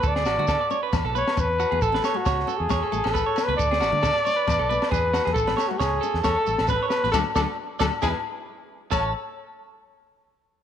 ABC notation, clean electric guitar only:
X:1
M:4/4
L:1/16
Q:"Swing 16ths" 1/4=135
K:A
V:1 name="Clean electric guitar"
A G F F A d c B2 A B2 z2 F G | A B c z c2 A2 c A A A B c2 B | A G F z A d c B2 A B2 G2 F G | A B c z c2 A2 c A A A B c2 B |
[FAd]2 [FAd]2 z2 [FAd]2 [EGB]2 z6 | A2 z12 z2 |]